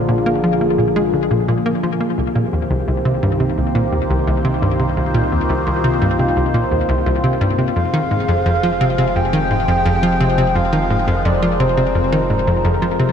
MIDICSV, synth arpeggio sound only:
0, 0, Header, 1, 2, 480
1, 0, Start_track
1, 0, Tempo, 697674
1, 1501, Time_signature, 4, 2, 24, 8
1, 9028, End_track
2, 0, Start_track
2, 0, Title_t, "Synth arpeggio sound"
2, 0, Program_c, 0, 84
2, 59, Note_on_c, 0, 46, 102
2, 139, Note_off_c, 0, 46, 0
2, 179, Note_on_c, 0, 58, 101
2, 259, Note_off_c, 0, 58, 0
2, 300, Note_on_c, 0, 53, 93
2, 415, Note_off_c, 0, 53, 0
2, 420, Note_on_c, 0, 58, 75
2, 499, Note_off_c, 0, 58, 0
2, 540, Note_on_c, 0, 46, 78
2, 587, Note_off_c, 0, 46, 0
2, 661, Note_on_c, 0, 56, 102
2, 708, Note_off_c, 0, 56, 0
2, 781, Note_on_c, 0, 50, 72
2, 860, Note_off_c, 0, 50, 0
2, 900, Note_on_c, 0, 46, 99
2, 1012, Note_off_c, 0, 46, 0
2, 1021, Note_on_c, 0, 46, 104
2, 1099, Note_off_c, 0, 46, 0
2, 1141, Note_on_c, 0, 58, 98
2, 1220, Note_off_c, 0, 58, 0
2, 1261, Note_on_c, 0, 53, 98
2, 1375, Note_off_c, 0, 53, 0
2, 1380, Note_on_c, 0, 58, 77
2, 1459, Note_off_c, 0, 58, 0
2, 1500, Note_on_c, 0, 36, 81
2, 1547, Note_off_c, 0, 36, 0
2, 1620, Note_on_c, 0, 46, 99
2, 1668, Note_off_c, 0, 46, 0
2, 1740, Note_on_c, 0, 39, 77
2, 1819, Note_off_c, 0, 39, 0
2, 1860, Note_on_c, 0, 36, 100
2, 1972, Note_off_c, 0, 36, 0
2, 1980, Note_on_c, 0, 36, 95
2, 2059, Note_off_c, 0, 36, 0
2, 2101, Note_on_c, 0, 48, 100
2, 2179, Note_off_c, 0, 48, 0
2, 2220, Note_on_c, 0, 43, 100
2, 2335, Note_off_c, 0, 43, 0
2, 2340, Note_on_c, 0, 48, 80
2, 2419, Note_off_c, 0, 48, 0
2, 2461, Note_on_c, 0, 36, 76
2, 2508, Note_off_c, 0, 36, 0
2, 2580, Note_on_c, 0, 46, 100
2, 2628, Note_off_c, 0, 46, 0
2, 2700, Note_on_c, 0, 39, 76
2, 2779, Note_off_c, 0, 39, 0
2, 2821, Note_on_c, 0, 36, 101
2, 2933, Note_off_c, 0, 36, 0
2, 2941, Note_on_c, 0, 36, 100
2, 3020, Note_off_c, 0, 36, 0
2, 3060, Note_on_c, 0, 48, 97
2, 3139, Note_off_c, 0, 48, 0
2, 3180, Note_on_c, 0, 43, 94
2, 3294, Note_off_c, 0, 43, 0
2, 3300, Note_on_c, 0, 48, 77
2, 3379, Note_off_c, 0, 48, 0
2, 3419, Note_on_c, 0, 36, 81
2, 3467, Note_off_c, 0, 36, 0
2, 3539, Note_on_c, 0, 46, 101
2, 3587, Note_off_c, 0, 46, 0
2, 3660, Note_on_c, 0, 39, 75
2, 3739, Note_off_c, 0, 39, 0
2, 3780, Note_on_c, 0, 36, 100
2, 3891, Note_off_c, 0, 36, 0
2, 3899, Note_on_c, 0, 36, 97
2, 3979, Note_off_c, 0, 36, 0
2, 4019, Note_on_c, 0, 48, 99
2, 4099, Note_off_c, 0, 48, 0
2, 4139, Note_on_c, 0, 43, 97
2, 4254, Note_off_c, 0, 43, 0
2, 4261, Note_on_c, 0, 48, 74
2, 4339, Note_off_c, 0, 48, 0
2, 4381, Note_on_c, 0, 36, 80
2, 4428, Note_off_c, 0, 36, 0
2, 4500, Note_on_c, 0, 46, 97
2, 4548, Note_off_c, 0, 46, 0
2, 4620, Note_on_c, 0, 39, 73
2, 4699, Note_off_c, 0, 39, 0
2, 4740, Note_on_c, 0, 36, 101
2, 4851, Note_off_c, 0, 36, 0
2, 4859, Note_on_c, 0, 36, 101
2, 4939, Note_off_c, 0, 36, 0
2, 4979, Note_on_c, 0, 48, 98
2, 5059, Note_off_c, 0, 48, 0
2, 5098, Note_on_c, 0, 43, 103
2, 5214, Note_off_c, 0, 43, 0
2, 5218, Note_on_c, 0, 48, 77
2, 5298, Note_off_c, 0, 48, 0
2, 5340, Note_on_c, 0, 41, 80
2, 5387, Note_off_c, 0, 41, 0
2, 5459, Note_on_c, 0, 51, 102
2, 5507, Note_off_c, 0, 51, 0
2, 5580, Note_on_c, 0, 44, 72
2, 5659, Note_off_c, 0, 44, 0
2, 5699, Note_on_c, 0, 41, 99
2, 5811, Note_off_c, 0, 41, 0
2, 5820, Note_on_c, 0, 41, 98
2, 5899, Note_off_c, 0, 41, 0
2, 5940, Note_on_c, 0, 53, 98
2, 6019, Note_off_c, 0, 53, 0
2, 6060, Note_on_c, 0, 48, 102
2, 6172, Note_off_c, 0, 48, 0
2, 6180, Note_on_c, 0, 48, 102
2, 6228, Note_off_c, 0, 48, 0
2, 6301, Note_on_c, 0, 41, 78
2, 6348, Note_off_c, 0, 41, 0
2, 6420, Note_on_c, 0, 51, 103
2, 6468, Note_off_c, 0, 51, 0
2, 6540, Note_on_c, 0, 44, 73
2, 6619, Note_off_c, 0, 44, 0
2, 6661, Note_on_c, 0, 41, 93
2, 6772, Note_off_c, 0, 41, 0
2, 6780, Note_on_c, 0, 41, 100
2, 6859, Note_off_c, 0, 41, 0
2, 6900, Note_on_c, 0, 53, 99
2, 6979, Note_off_c, 0, 53, 0
2, 7021, Note_on_c, 0, 48, 96
2, 7133, Note_off_c, 0, 48, 0
2, 7141, Note_on_c, 0, 48, 104
2, 7188, Note_off_c, 0, 48, 0
2, 7262, Note_on_c, 0, 41, 78
2, 7308, Note_off_c, 0, 41, 0
2, 7380, Note_on_c, 0, 51, 99
2, 7428, Note_off_c, 0, 51, 0
2, 7501, Note_on_c, 0, 44, 74
2, 7579, Note_off_c, 0, 44, 0
2, 7620, Note_on_c, 0, 41, 100
2, 7733, Note_off_c, 0, 41, 0
2, 7741, Note_on_c, 0, 41, 106
2, 7820, Note_off_c, 0, 41, 0
2, 7860, Note_on_c, 0, 53, 98
2, 7939, Note_off_c, 0, 53, 0
2, 7981, Note_on_c, 0, 48, 103
2, 8092, Note_off_c, 0, 48, 0
2, 8101, Note_on_c, 0, 48, 100
2, 8148, Note_off_c, 0, 48, 0
2, 8221, Note_on_c, 0, 41, 83
2, 8268, Note_off_c, 0, 41, 0
2, 8342, Note_on_c, 0, 51, 101
2, 8388, Note_off_c, 0, 51, 0
2, 8462, Note_on_c, 0, 44, 74
2, 8540, Note_off_c, 0, 44, 0
2, 8581, Note_on_c, 0, 41, 95
2, 8692, Note_off_c, 0, 41, 0
2, 8700, Note_on_c, 0, 41, 101
2, 8779, Note_off_c, 0, 41, 0
2, 8820, Note_on_c, 0, 53, 95
2, 8899, Note_off_c, 0, 53, 0
2, 8940, Note_on_c, 0, 48, 100
2, 9028, Note_off_c, 0, 48, 0
2, 9028, End_track
0, 0, End_of_file